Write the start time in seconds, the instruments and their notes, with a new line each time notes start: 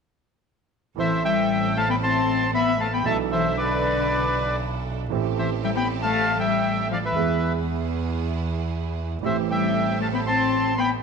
0.96 grand piano A1 A2 E3 A3 C4 A4, double bass A1, cello E3, string section C4 E4 A4, bandoneon C5
1.00 bandoneon E5
1.24 cello G3, bandoneon E5 G5
1.76 cello A3, bandoneon F5 A5
1.89 cello B3, bandoneon G5 B5
2.02 cello C4, bandoneon A5 C6
2.54 cello B3, bandoneon E5 B5
2.80 cello A3, bandoneon F5 A5
2.92 cello B3, bandoneon G5 B5
3.03 grand piano B1 B2 E3 B3 D4, double bass B1, cello A3, string section D4 E4 A4, bandoneon E5 A5
3.07 grand piano A4
3.30 cello E3, bandoneon C5 E5
3.56 cello D3, bandoneon B4 D5
5.09 double bass A1, grand piano A1 A2 E3 A3 C4, string section C4 G4 A4
5.13 grand piano G4
5.38 cello E3, bandoneon C5 E5
5.64 cello G3, bandoneon E5 G5
5.75 cello B3, bandoneon G5 B5
6.01 cello A3, bandoneon F5 A5
6.39 cello G3, bandoneon E5 G5
6.90 cello F3, bandoneon D5 F5
7.03 cello E3, bandoneon B4 E5
7.15 grand piano E2 E3 G#3 B3 G#4, double bass E2, string section B3 E4 G#4
9.21 grand piano A1 A2 E3 A3 C4, double bass A1, cello E3, string section C4 G4 A4
9.25 grand piano G4, bandoneon C5 E5
9.48 cello G3, bandoneon G5
9.52 bandoneon E5
10.00 cello A3, bandoneon F5 A5
10.13 cello B3, bandoneon G5 B5
10.26 cello C4, bandoneon A5 C6
10.78 cello B3, bandoneon G5 B5